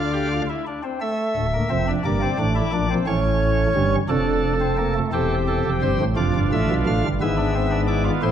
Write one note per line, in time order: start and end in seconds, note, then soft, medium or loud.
0.00 0.41 D2 medium
0.00 0.41 D3 medium
0.00 0.10 F4 medium
0.00 0.41 D5 medium
0.00 0.41 F5 medium
0.13 0.28 G4 medium
0.32 0.47 F4 medium
0.49 0.64 E4 medium
0.67 0.82 D4 medium
0.83 0.98 C4 medium
1.01 1.46 A3 medium
1.01 1.90 E5 medium
1.36 1.58 D1 medium
1.36 1.58 D2 medium
1.54 1.68 A#3 medium
1.70 1.92 F1 medium
1.70 1.92 F2 medium
1.70 1.85 C4 medium
1.88 2.03 D4 medium
2.05 2.26 G1 medium
2.05 2.26 G2 medium
2.05 2.20 A#3 medium
2.05 2.93 D5 medium
2.22 2.37 C4 medium
2.39 2.60 A1 medium
2.39 2.61 A2 medium
2.39 2.54 D4 medium
2.55 2.70 E4 medium
2.73 2.94 A#1 loud
2.73 2.94 A#2 medium
2.73 2.88 D4 medium
2.90 3.05 C4 medium
3.07 3.66 A1 medium
3.07 3.66 A2 loud
3.07 3.95 C#4 medium
3.07 3.95 C#5 medium
3.75 3.96 G1 medium
3.75 3.97 G2 medium
4.09 4.98 F1 loud
4.09 4.98 F2 loud
4.09 4.53 D4 medium
4.09 4.98 A4 medium
4.61 4.76 C4 medium
4.78 4.93 A#3 medium
4.94 5.10 A3 medium
5.12 5.58 E1 medium
5.12 5.58 E2 medium
5.12 6.02 C4 medium
5.12 6.03 G4 medium
5.12 5.34 A4 medium
5.47 5.69 A4 medium
5.65 5.80 F1 medium
5.65 5.80 F2 medium
5.82 5.97 G1 medium
5.82 5.97 G2 medium
5.82 6.04 C5 medium
6.00 6.15 A1 medium
6.00 6.15 A2 medium
6.16 6.32 F1 medium
6.16 6.32 F2 medium
6.16 7.06 D4 medium
6.16 7.06 F4 medium
6.16 6.38 D5 medium
6.35 6.50 G1 medium
6.35 6.50 G2 medium
6.52 6.67 A1 medium
6.52 6.67 A2 medium
6.52 6.73 E5 medium
6.70 6.84 B1 medium
6.70 6.84 B2 medium
6.86 7.01 A1 medium
6.86 7.01 A2 medium
6.86 7.08 F5 medium
7.04 7.18 G1 medium
7.04 7.19 G2 medium
7.21 8.10 G#1 medium
7.21 8.10 G#2 medium
7.21 8.31 B3 medium
7.21 7.36 E4 medium
7.21 7.80 E5 medium
7.37 7.52 D4 medium
7.55 7.70 C4 medium
7.71 7.86 D4 medium
7.88 8.03 E4 medium
7.88 8.09 D5 medium
8.05 8.20 F4 medium
8.22 8.31 A1 medium
8.22 8.31 A2 medium
8.22 8.31 E4 medium
8.22 8.31 C5 medium